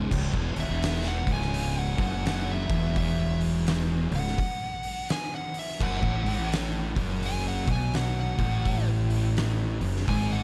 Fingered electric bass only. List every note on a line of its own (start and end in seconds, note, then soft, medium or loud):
0.12 0.32 C#1 medium
0.34 0.54 E1 loud
0.56 0.67 D#1 medium
0.68 1.22 E1 loud
1.27 1.94 C#1 medium
1.99 2.65 F#1 medium
2.69 4.08 E1 medium
4.11 4.36 C#1 medium
5.80 6.01 F#1 loud
6.03 6.24 A1 loud
6.25 6.37 G#1 loud
6.38 6.92 A1 loud
6.96 7.64 F#1 medium
7.68 8.35 B1 loud
8.38 9.77 A1 medium
9.80 10.05 F#1 medium
10.08 10.43 G#1 loud